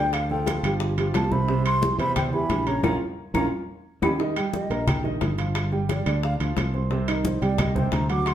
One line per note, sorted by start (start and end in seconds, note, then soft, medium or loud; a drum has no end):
0.00 0.58 D2 medium
0.00 0.24 D3 medium
0.00 0.24 D4 medium
0.00 0.25 D5 medium
0.00 0.15 G5 medium
0.13 0.31 F5 medium
0.13 high bongo medium
0.13 high conga soft
0.13 high timbale medium
0.13 claves medium
0.30 0.58 F3 medium
0.30 0.58 F4 medium
0.30 0.59 A4 medium
0.30 0.78 G5 medium
0.30 high bongo soft
0.30 high conga soft
0.47 high bongo medium
0.47 high conga medium
0.47 high timbale medium
0.63 1.11 G1 medium
0.63 0.92 F3 medium
0.63 0.92 F4 medium
0.63 0.92 G4 medium
0.63 high bongo soft
0.63 high timbale medium
0.63 claves medium
0.80 high bongo medium
0.80 high conga soft
0.98 1.26 F3 medium
0.98 1.26 F4 medium
0.98 1.26 G4 medium
0.98 high conga soft
0.98 high timbale medium
1.14 1.94 C2 medium
1.14 1.33 A5 loud
1.14 high bongo medium
1.14 low bongo medium
1.14 high conga medium
1.14 high timbale medium
1.14 low timbale medium
1.14 claves medium
1.31 1.46 C3 medium
1.31 1.46 C4 medium
1.31 1.46 C5 medium
1.31 1.65 B5 medium
1.31 high bongo soft
1.31 high conga medium
1.48 1.77 C3 medium
1.48 1.77 C4 medium
1.48 1.77 C5 medium
1.48 high bongo medium
1.48 high conga soft
1.66 1.97 C6 loud
1.66 high bongo soft
1.66 high conga soft
1.66 high timbale loud
1.66 claves medium
1.82 1.97 E3 medium
1.82 1.97 E4 medium
1.82 1.97 G4 medium
1.82 high bongo soft
1.82 high conga medium
1.99 2.46 E2 medium
1.99 2.27 C3 medium
1.99 2.27 C4 medium
1.99 2.28 C5 medium
1.99 2.15 B5 loud
1.99 high bongo soft
1.99 high conga soft
1.99 high timbale medium
2.16 2.32 G5 medium
2.16 high bongo medium
2.16 high conga soft
2.16 low conga medium
2.16 high timbale medium
2.16 claves medium
2.33 2.61 E3 medium
2.33 2.61 E4 medium
2.33 2.61 G4 medium
2.33 2.69 B5 loud
2.33 high conga soft
2.50 2.82 A#1 medium
2.50 high bongo medium
2.50 low bongo medium
2.50 high conga medium
2.50 high timbale medium
2.67 2.81 C#3 medium
2.67 2.81 C#4 medium
2.67 2.81 C#5 medium
2.67 2.84 A#5 loud
2.67 high bongo soft
2.67 high conga soft
2.67 high timbale medium
2.83 2.96 A#1 medium
2.83 2.95 A#3 loud
2.83 2.95 C#4 loud
2.83 2.95 F4 loud
2.83 2.95 A#5 medium
2.83 low bongo loud
2.83 high conga loud
2.83 high timbale medium
2.83 claves loud
3.34 3.47 A#1 loud
3.34 3.46 A#3 medium
3.34 3.46 C#4 medium
3.34 3.46 F4 medium
3.34 3.46 A#5 medium
3.34 low bongo medium
3.34 high conga loud
3.34 high timbale medium
3.34 claves loud
4.02 4.15 D#2 medium
4.02 4.14 C#4 medium
4.02 4.14 D#4 medium
4.02 4.14 G4 medium
4.02 4.14 B5 medium
4.02 low bongo medium
4.02 high conga medium
4.02 high timbale medium
4.02 claves loud
4.19 4.34 D#3 medium
4.19 4.34 D#4 medium
4.19 4.34 D#5 medium
4.19 high bongo medium
4.19 high conga soft
4.36 4.65 G3 medium
4.36 4.65 G4 medium
4.36 4.65 G5 medium
4.36 high bongo soft
4.36 high conga soft
4.36 high timbale loud
4.36 claves medium
4.53 4.89 D#5 medium
4.53 high bongo soft
4.53 high conga medium
4.70 5.18 A#1 medium
4.70 4.98 A#3 medium
4.70 4.99 A#4 medium
4.70 4.99 A#5 medium
4.70 high bongo soft
4.70 high conga soft
4.70 high timbale medium
4.87 5.05 G5 medium
4.87 high bongo medium
4.87 high conga soft
4.87 low conga medium
4.87 high timbale medium
4.87 claves medium
5.04 5.32 D#3 medium
5.04 5.32 D#4 medium
5.04 5.32 D#5 medium
5.04 high conga soft
5.21 6.01 G1 medium
5.21 high bongo medium
5.21 low bongo medium
5.21 high conga medium
5.21 high timbale medium
5.38 5.66 F3 medium
5.38 5.66 F4 medium
5.38 5.67 F5 medium
5.38 high bongo soft
5.38 high conga soft
5.38 high timbale medium
5.55 high bongo medium
5.55 high conga soft
5.55 high timbale medium
5.55 claves medium
5.72 6.00 G3 medium
5.72 6.00 G4 medium
5.72 6.00 G5 medium
5.72 high bongo soft
5.72 high conga soft
5.89 6.21 D5 medium
5.89 high bongo medium
5.89 high conga medium
5.89 high timbale medium
6.06 6.38 D2 medium
6.06 6.34 D3 medium
6.06 6.34 D4 medium
6.06 6.35 D5 medium
6.06 high bongo soft
6.06 high conga soft
6.06 high timbale medium
6.06 claves medium
6.23 6.34 F5 medium
6.23 high bongo medium
6.23 high conga soft
6.40 6.56 D2 medium
6.40 6.68 F3 medium
6.40 6.68 F4 medium
6.40 6.69 F5 medium
6.40 high conga soft
6.40 high timbale medium
6.57 7.36 C2 medium
6.57 high bongo medium
6.57 low bongo medium
6.57 high conga medium
6.57 high timbale medium
6.57 claves medium
6.74 6.88 C4 medium
6.74 6.88 C5 medium
6.74 6.88 C6 medium
6.74 high bongo soft
6.91 7.05 C3 medium
6.91 7.05 C4 medium
6.91 7.05 C5 medium
6.91 high bongo medium
6.91 high conga soft
7.08 7.36 D#3 medium
7.08 7.36 D#4 medium
7.08 7.27 A#4 medium
7.08 7.36 D#5 medium
7.08 high bongo soft
7.08 high conga soft
7.08 high timbale medium
7.08 claves medium
7.25 7.44 C5 medium
7.25 high bongo medium
7.25 high conga medium
7.41 7.89 C2 loud
7.41 7.69 G3 medium
7.41 7.70 G4 medium
7.41 7.61 D5 medium
7.41 7.70 G5 medium
7.41 high bongo soft
7.41 high conga soft
7.41 high timbale medium
7.58 7.76 D#5 medium
7.58 high bongo medium
7.58 high conga soft
7.58 low conga medium
7.58 high timbale medium
7.58 claves medium
7.75 8.03 C3 medium
7.75 8.03 C4 medium
7.75 8.03 C5 medium
7.75 7.95 G5 medium
7.75 high conga soft
7.75 low conga medium
7.92 8.34 D2 medium
7.92 8.10 A#5 medium
7.92 high bongo medium
7.92 low bongo medium
7.92 high conga medium
7.92 high timbale medium
8.09 8.34 F#3 medium
8.09 8.34 F#4 medium
8.09 8.34 F#5 medium
8.09 8.29 D6 loud
8.09 high bongo soft
8.09 high conga soft
8.09 high timbale medium
8.26 8.34 C6 medium
8.26 high bongo medium
8.26 high conga soft
8.26 high timbale medium
8.26 claves medium